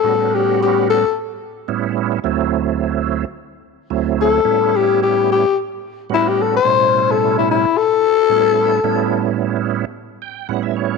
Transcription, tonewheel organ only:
X:1
M:4/4
L:1/16
Q:"Swing 16ths" 1/4=109
K:Amix
V:1 name="Tonewheel organ"
z16 | z16 | z16 | z16 |
z8 z2 g2 f e c2 |]
V:2 name="Tonewheel organ"
[A,,G,B,CF]8 z4 [A,,G,B,CE]4 | [D,,F,A,=CE]8 z4 [D,,F,A,CE]4 | [A,,G,B,CE]8 z4 [A,,G,B,CF]4 | [A,,B,,G,CE]8 z4 [A,,G,B,CE]4 |
[A,,G,B,CE]8 z4 [A,,G,B,CE]4 |]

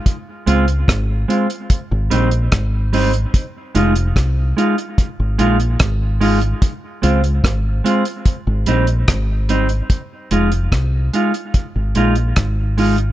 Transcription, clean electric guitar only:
X:1
M:4/4
L:1/8
Q:1/4=73
K:Fm
V:1 name="Clean electric guitar"
z [A,CF] z [A,CF] z [G,CE] z [G,CE] | z [A,EF] z [A,EF] z [A,EF] z [A,EF] | z [A,CF] z [A,CF] z [G,CE] z [G,CE] | z [A,EF] z [A,EF] z [A,EF] z [A,EF] |]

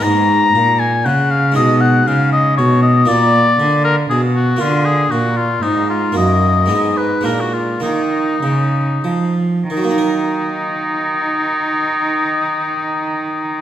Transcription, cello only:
X:1
M:3/4
L:1/8
Q:1/4=112
K:Ebm
V:1 name="Cello" clef=bass
A,,2 B,,2 D,2 | C,2 D,2 C,2 | B,,2 =D,2 C,2 | =D,2 B,,2 A,,2 |
G,,2 A,,2 B,,2 | E,2 D,2 F,2 | E,6- | E,6 |]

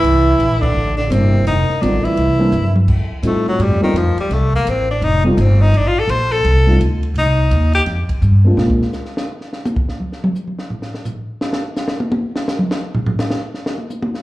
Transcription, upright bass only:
X:1
M:4/4
L:1/8
Q:"Swing" 1/4=169
K:Fmix
V:1 name="Upright bass" clef=bass
C,,2 B,,,2 A,,,2 G,,,2 | F,,, z A,,, z C,,2 G,,2 | F,, z A,,2 (3G,, F,, E,, F,, z | C,,2 A,,,2 F,,,2 G,,,2 |
A,,,2 B,,,2 C,,2 D,,2 | C,,2 E,,2 F,, z G,,2 | B,, z6 z | z8 |
z8 | z8 |]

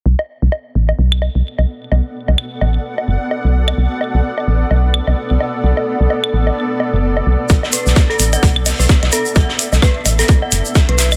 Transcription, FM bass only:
X:1
M:4/4
L:1/16
Q:"Swing 16ths" 1/4=129
K:Bm
V:1 name="FM bass" clef=bass
B,,, z2 B,,, z2 A,,, z B,,,2 z B,,, z B,,, z2 | B,,, z2 B,,, z2 A,,, z3 F,,, z2 B,,,2 z | B,,, z2 B,,, z2 A,,, z B,,,2 z B,,, z B,,, z2 | B,,, z2 B,,, z2 A,,, z4 F,,,2 z B,,, z |
B,,, z2 B,,, z2 A,,, z B,,,2 z B,,, z B,,, z2 | B,,, z2 B,,, z2 A,,, z3 F,,, z2 B,,,2 z |]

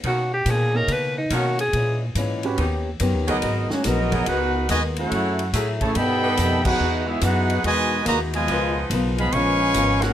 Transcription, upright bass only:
X:1
M:4/4
L:1/8
Q:"Swing" 1/4=142
K:G#m
V:1 name="Upright bass" clef=bass
B,,2 A,,2 C,2 B,,2 | A,,2 G,,2 D,,2 (3F,, D,, C,, | G,,, z A,,,2 C,,2 D,,2 | F,,2 =A,,2 =G,,2 ^E,,2 |
E,,2 F,,2 E,,2 D,,2 | C,,2 B,,,2 A,,,2 G,,,2 |]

